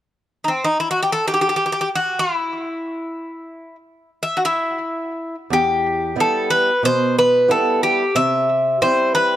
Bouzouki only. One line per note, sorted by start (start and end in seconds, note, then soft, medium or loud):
0.44 0.65 C4 medium
0.44 0.48 D#4 soft
0.65 0.78 D#4 medium
0.80 0.90 E4 medium
0.91 1.02 F#4 medium
1.03 1.12 G4 medium
1.12 1.27 A4 medium
1.28 1.33 G4 medium
1.34 1.40 G4 medium
1.41 1.48 G4 medium
1.49 1.55 G4 medium
1.56 1.64 G4 medium
1.66 1.71 G4 medium
1.72 1.80 G4 medium
1.81 1.88 G4 medium
1.95 2.18 F#4 medium
2.19 3.75 E4 medium
4.23 4.38 E5 medium
4.37 4.44 F#4 medium
4.45 5.35 E4 medium
5.53 6.15 G4 medium
6.20 6.50 A4 medium
6.50 6.81 B4 medium
6.85 7.16 C5 medium
7.19 7.49 B4 medium
7.51 7.82 A4 medium
7.83 8.14 G4 medium
8.16 8.82 E5 medium
8.82 9.13 C5 medium
9.15 9.36 B4 medium